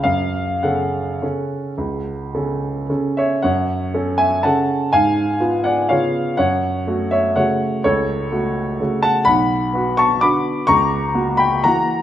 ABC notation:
X:1
M:3/4
L:1/8
Q:1/4=124
K:F#m
V:1 name="Grand piano"
^e2 f4- | f4 z [ce] | [cf]3 [eg] [fa]2 | [^eg]3 [df] [ce]2 |
[cf]3 [ce] [cf]2 | [Ac]4- [Ac] [fa] | [fb]3 [ac'] [bd']2 | [^ac']3 [=gb] [fa]2 |]
V:2 name="Grand piano"
F,,2 [C,CA]2 [C,CA]2 | C,,2 [C,CA]2 [C,CA]2 | F,,2 [CA]2 [C,CA]2 | G,,2 [B,^E]2 [C,B,E]2 |
F,,2 [A,F]2 [C,A,F]2 | C,,2 [A,F]2 [C,A,F]2 | B,,,2 [B,F]2 [D,B,F]2 | C,,2 [^A,F]2 [E,A,F]2 |]